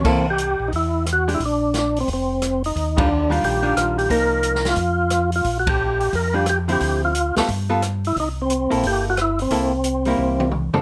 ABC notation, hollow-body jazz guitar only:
X:1
M:4/4
L:1/8
Q:"Swing" 1/4=178
K:Cmix
V:1 name="Hollow-body jazz guitar"
[B,EA] z6 [_A,DG] | z8 | z [_E,G,DF] z [E,G,DF]2 [E,G,DF]3 | [F,B,_E]4 z4 |
z4 z [G,DF] z [D,F,CE]- | [D,F,CE]2 z [G,=B,FA] z [G,B,FA] z2 | z3 [B,EA]3 z2 | [B,EA] z2 [G,B,E]3 z [F,CDA] |]